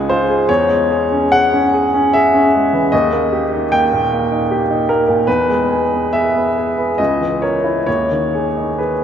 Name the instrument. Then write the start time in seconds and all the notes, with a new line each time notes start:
grand piano
Already playing: C#2 G#3 G#5
0.09 F4 C5
0.29 G#4
0.49 E2 C#5
0.69 G#3
0.90 G#4
1.12 C#4
1.32 G#4 F#5
1.53 C#4
1.74 G#4
1.94 C#4
2.13 G#4 E5
2.34 C#4
2.54 G#3
2.73 E3
2.92 D#2 D#5
3.12 A#3
3.32 G4
3.52 D#4
3.72 A#3 G5
3.93 A#2
4.12 A#3
4.32 D#4
4.51 G4
4.71 D#4
4.89 A#3 A#4
5.09 A#2
5.27 E2 B4
5.49 G#3
5.70 G#4
5.93 B3
6.13 G#4 E5
6.35 B3
6.58 G#4
6.78 B3
6.98 C#2 D#5
7.21 E3
7.42 A#4 C#5
7.64 E4
7.87 D#2 C#5
8.11 D#3
8.35 G#4
8.57 D#4
8.78 G#4 B4